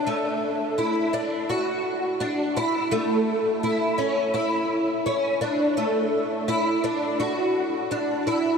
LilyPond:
\new Staff \with { instrumentName = "Twelve-string acoustic guitar" } { \time 4/4 \key d \lydian \tempo 4 = 84 a4 e'8 d'8 fis'4 d'8 e'8 | a4 e'8 cis'8 e'4 cis'8 d'8 | a4 e'8 d'8 fis'4 d'8 e'8 | }